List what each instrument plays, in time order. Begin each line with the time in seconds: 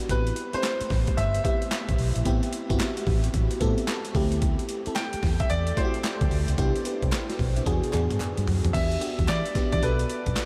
Already playing: fm electric piano B3 D4 D#4 E4 F#4 G4
0.09 fingered electric bass A1, fm electric piano B3 C4 E4 G4, grand piano B4, kick, closed hi-hat
0.27 closed hi-hat
0.36 closed hi-hat
0.53 fm electric piano A3 C4 E4 G4, grand piano C5, muted fingered electric bass stroke, closed hi-hat
0.63 snare, clap, closed hi-hat
0.81 muted fingered electric bass stroke, closed hi-hat
0.90 fingered electric bass A1, kick, snare, open hi-hat
1.07 kick, closed hi-hat
1.17 fingered electric bass G1, grand piano E5, closed hi-hat
1.34 closed hi-hat
1.44 fm electric piano B3 C4 E4 G4, grand piano E5, kick, closed hi-hat
1.62 closed hi-hat
1.71 snare, clap, closed hi-hat
1.89 fingered electric bass A1, kick, closed hi-hat
1.98 fingered electric bass B1, open hi-hat
2.16 fingered electric bass A#1, closed hi-hat
2.25 fingered electric bass A1, fm electric piano B3 C4 E4 G4, kick, closed hi-hat
2.43 closed hi-hat
2.53 closed hi-hat
2.69 fingered electric bass G1, fm electric piano B3 C4 E4 F#4, kick, closed hi-hat
2.80 snare, clap, closed hi-hat
2.97 closed hi-hat
3.07 fingered electric bass A1, kick, open hi-hat
3.24 closed hi-hat
3.34 fingered electric bass A1, kick, closed hi-hat
3.51 closed hi-hat
3.60 fingered electric bass A2, fm electric piano B3 C4 E4 A4, kick, closed hi-hat
3.78 closed hi-hat
3.87 snare, clap, closed hi-hat
4.05 closed hi-hat
4.15 fingered electric bass D2, fm electric piano A3 C4 E4 G4, kick, open hi-hat
4.32 closed hi-hat
4.42 kick, closed hi-hat
4.59 closed hi-hat
4.69 closed hi-hat
4.86 fm electric piano A3 C4 E4 A4, muted fingered electric bass stroke, closed hi-hat
4.95 grand piano G5, snare, clap, closed hi-hat
5.13 muted fingered electric bass stroke, closed hi-hat
5.23 fingered electric bass E2, kick, snare, open hi-hat
5.40 grand piano E5, kick, closed hi-hat
5.50 fingered electric bass E2, grand piano D5, closed hi-hat
5.67 closed hi-hat
5.77 fm electric piano A3 C4 E4 F#4, grand piano C5, kick, closed hi-hat
5.85 fm electric piano G4
5.94 closed hi-hat
6.04 snare, clap, closed hi-hat
6.21 fingered electric bass D2, kick, closed hi-hat
6.31 fingered electric bass D2, open hi-hat
6.48 fingered electric bass C#2, closed hi-hat
6.58 fingered electric bass C2, fm electric piano B3 D4 E4 G4, kick, closed hi-hat
6.76 closed hi-hat
6.85 fm electric piano G4 B4, closed hi-hat
7.02 fingered electric bass C2, fm electric piano A4 C5, kick, closed hi-hat
7.12 fm electric piano E4 G4, snare, clap, closed hi-hat
7.29 fm electric piano D4 F#4, snare, closed hi-hat
7.39 fingered electric bass B1, kick, open hi-hat
7.56 fm electric piano C4 E4, closed hi-hat
7.66 fingered electric bass E2, fm electric piano B3 D4 F#4 G#4, kick, closed hi-hat, high tom
7.84 closed hi-hat
7.93 fingered electric bass E2, fm electric piano B3 D4 F#4 G#4, clap, closed hi-hat, mid tom
8.10 fingered electric bass G2, closed hi-hat, mid tom
8.20 clap, closed hi-hat, mid tom
8.37 fingered electric bass G2, closed hi-hat
8.48 fingered electric bass F#2, floor tom, open hi-hat
8.64 fingered electric bass F2, closed hi-hat, floor tom
8.73 fingered electric bass E2, fm electric piano B3 D4 F#4 G4, grand piano E5, kick, closed hi-hat, crash
8.91 closed hi-hat
9.00 fm electric piano B3 D4 F#4 G4, closed hi-hat
9.19 fingered electric bass E2, kick, closed hi-hat
9.28 fingered electric bass E3, grand piano D5, snare, clap, closed hi-hat
9.46 closed hi-hat
9.55 fm electric piano B3 D4 F#4 G4, muted fingered electric bass stroke, kick, snare, closed hi-hat
9.72 fingered electric bass E3, grand piano D5, kick, closed hi-hat
9.82 fingered electric bass B1, fm electric piano B3 D4 F#4 A4, grand piano B4, closed hi-hat
9.99 closed hi-hat
10.10 closed hi-hat
10.26 fingered electric bass B1, kick, closed hi-hat
10.36 snare, clap, closed hi-hat